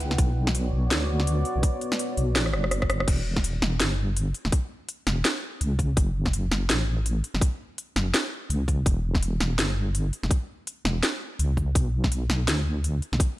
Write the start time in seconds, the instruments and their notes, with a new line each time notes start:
Already playing: wobble bass C#2, analog synth pad E4 B4 F#5 G5
0.00 closed hi-hat
0.11 snare
0.18 wobble bass B1, analog synth pad B3 F#4 C#5 D5, kick, closed hi-hat
0.47 snare
0.55 closed hi-hat
0.73 wobble bass B1
0.91 wobble bass D2, snare, closed hi-hat
1.20 snare
1.27 closed hi-hat
1.45 closed hi-hat
1.56 wobble bass B1
1.63 kick, closed hi-hat
1.81 closed hi-hat
1.92 snare
1.99 closed hi-hat
2.17 wobble bass B1, closed hi-hat
2.36 wobble bass A1, cross-stick, snare, closed hi-hat
2.46 cross-stick
2.53 wobble bass F#1, cross-stick
2.64 cross-stick
2.71 cross-stick, closed hi-hat
2.82 kick, cross-stick
2.90 cross-stick, closed hi-hat
3.00 cross-stick
3.08 wobble bass E1, kick, closed hi-hat, crash
3.36 kick, snare
3.44 closed hi-hat
3.62 wobble bass E1, snare
3.80 wobble bass G1, snare, closed hi-hat
4.17 closed hi-hat
4.34 closed hi-hat
4.45 wobble bass E1, snare
4.52 kick, closed hi-hat
4.89 closed hi-hat
5.07 wobble bass E1, snare
5.25 snare, closed hi-hat
5.61 wobble bass C#2, closed hi-hat
5.79 kick, closed hi-hat
5.97 wobble bass F#1, kick, closed hi-hat
6.26 kick, snare
6.33 closed hi-hat
6.51 wobble bass F#1, snare
6.69 wobble bass A1, snare, closed hi-hat
7.06 closed hi-hat
7.24 closed hi-hat
7.34 wobble bass F#1, snare
7.41 kick, closed hi-hat
7.78 closed hi-hat
7.96 wobble bass F#1, snare
8.14 snare, closed hi-hat
8.50 wobble bass C#2, closed hi-hat
8.68 kick, closed hi-hat
8.86 wobble bass E1, kick, closed hi-hat
9.15 kick, snare
9.23 closed hi-hat
9.40 wobble bass E1, snare
9.58 wobble bass G1, snare, closed hi-hat
9.95 closed hi-hat
10.13 closed hi-hat
10.23 wobble bass E1, snare
10.31 kick, closed hi-hat
10.67 closed hi-hat
10.85 wobble bass E1, snare
11.03 snare, closed hi-hat
11.39 wobble bass C#2, closed hi-hat
11.57 kick, closed hi-hat
11.75 wobble bass B1, kick, closed hi-hat
12.04 kick, snare
12.12 closed hi-hat
12.30 wobble bass B1, snare
12.48 wobble bass D2, snare, closed hi-hat
12.84 closed hi-hat
13.02 closed hi-hat
13.12 wobble bass B1, snare
13.20 kick, closed hi-hat